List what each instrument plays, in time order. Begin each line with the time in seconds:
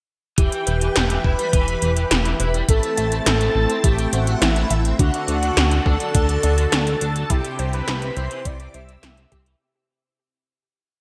0.38 analog synth bass E1, overdriven electric guitar E3, analog synth pad E3 E4 G4 B4, synth arpeggio sound E4, soft synth lead G4, string machine G5, kick, closed hi-hat
0.52 overdriven electric guitar E3, closed hi-hat
0.67 analog synth bass E1, overdriven electric guitar E3, synth arpeggio sound B4, closed hi-hat
0.81 overdriven electric guitar E3, closed hi-hat
0.96 analog synth bass E1, overdriven electric guitar G3, synth arpeggio sound E4, snare, closed hi-hat
1.10 overdriven electric guitar E3, closed hi-hat
1.24 analog synth bass E1, overdriven electric guitar E4, soft synth lead B4, synth arpeggio sound E5, string machine B5, kick
1.39 overdriven electric guitar G3, closed hi-hat
1.53 analog synth bass E1, overdriven electric guitar E3, synth arpeggio sound E4, kick, closed hi-hat
1.68 overdriven electric guitar E3, closed hi-hat
1.82 analog synth bass E1, overdriven electric guitar E3, closed hi-hat
1.97 overdriven electric guitar E3, closed hi-hat
2.11 analog synth bass E1, overdriven electric guitar G3, synth arpeggio sound E4, snare, closed hi-hat
2.25 overdriven electric guitar E3, closed hi-hat
2.40 analog synth bass E1, overdriven electric guitar E4, synth arpeggio sound B4, soft synth lead B4, string machine B5, closed hi-hat
2.54 overdriven electric guitar G3, closed hi-hat
2.69 analog synth bass A1, overdriven electric guitar A3, analog synth pad A3 C4, synth arpeggio sound E4, soft synth lead A4, string machine A5, kick, closed hi-hat
2.83 overdriven electric guitar A3, closed hi-hat
2.97 analog synth bass A1, overdriven electric guitar A3, synth arpeggio sound E5, closed hi-hat
3.12 overdriven electric guitar A3, closed hi-hat
3.26 analog synth bass A1, overdriven electric guitar C4, synth arpeggio sound E4, soft synth lead A4, string machine A5, snare, closed hi-hat
3.41 overdriven electric guitar A3, closed hi-hat
3.55 analog synth bass A1, overdriven electric guitar A4
3.70 overdriven electric guitar C4, closed hi-hat
3.84 analog synth bass A1, overdriven electric guitar A3, synth arpeggio sound E4, soft synth lead G4, string machine G5, kick, closed hi-hat
3.98 overdriven electric guitar A3, closed hi-hat
4.13 analog synth bass A1, overdriven electric guitar A3, soft synth lead F#4, synth arpeggio sound C5, string machine F#5, closed hi-hat
4.27 overdriven electric guitar A3, closed hi-hat
4.42 analog synth bass A1, overdriven electric guitar C4, synth arpeggio sound E4, soft synth lead E4, string machine E5, snare, closed hi-hat
4.56 overdriven electric guitar A3, closed hi-hat
4.70 analog synth bass A1, overdriven electric guitar A4, synth arpeggio sound E5, closed hi-hat
4.85 overdriven electric guitar C4, closed hi-hat
4.99 analog synth bass D2, analog synth pad D3 D4 F#4 A4, overdriven electric guitar D3, synth arpeggio sound D4, soft synth lead F#4, string machine F#5, kick, closed hi-hat
5.14 overdriven electric guitar D3, closed hi-hat
5.28 analog synth bass D2, overdriven electric guitar D3, closed hi-hat
5.43 overdriven electric guitar D3, closed hi-hat
5.57 analog synth bass D2, overdriven electric guitar F#3, synth arpeggio sound D4, snare, closed hi-hat
5.71 overdriven electric guitar D3, closed hi-hat
5.86 analog synth bass D2, overdriven electric guitar D4, synth arpeggio sound A4, soft synth lead A4, string machine A5, kick
6.00 overdriven electric guitar F#3, closed hi-hat
6.15 analog synth bass D2, overdriven electric guitar D3, synth arpeggio sound D4, kick, closed hi-hat
6.29 overdriven electric guitar D3, closed hi-hat
6.43 analog synth bass D2, overdriven electric guitar D3, synth arpeggio sound D5, closed hi-hat
6.58 overdriven electric guitar D3, closed hi-hat
6.72 analog synth bass D2, overdriven electric guitar F#3, synth arpeggio sound D4, snare, closed hi-hat
6.87 overdriven electric guitar D3, closed hi-hat
7.01 analog synth bass D2, overdriven electric guitar D4, soft synth lead A4, string machine A5, closed hi-hat
7.16 overdriven electric guitar F#3, closed hi-hat
7.30 analog synth bass C2, overdriven electric guitar C3, analog synth pad C3 C4 E4 G4, synth arpeggio sound E4, soft synth lead G4, string machine G5, kick, closed hi-hat
7.45 overdriven electric guitar C3, closed hi-hat
7.59 analog synth bass C2, overdriven electric guitar C3, synth arpeggio sound C5, closed hi-hat
7.73 overdriven electric guitar C3, soft synth lead B4, string machine B5, closed hi-hat
7.88 analog synth bass C2, overdriven electric guitar E3, synth arpeggio sound E4, snare, closed hi-hat
8.02 overdriven electric guitar C3, closed hi-hat
8.17 analog synth bass C2, overdriven electric guitar C4, soft synth lead C5, synth arpeggio sound E5, string machine C6, closed hi-hat
8.31 overdriven electric guitar E3, closed hi-hat
8.45 analog synth bass C2, overdriven electric guitar C3, synth arpeggio sound E4, soft synth lead D5, string machine D6, kick, closed hi-hat
8.60 overdriven electric guitar C3, closed hi-hat
8.74 analog synth bass C2, overdriven electric guitar C3, synth arpeggio sound C5, soft synth lead E5, string machine E6, closed hi-hat
8.89 overdriven electric guitar C3, closed hi-hat
9.03 analog synth bass C2, overdriven electric guitar E3, synth arpeggio sound E4, snare, closed hi-hat
9.17 overdriven electric guitar C3, closed hi-hat
9.32 analog synth bass C2, overdriven electric guitar C4, synth arpeggio sound G4, kick, closed hi-hat
9.46 overdriven electric guitar E3, closed hi-hat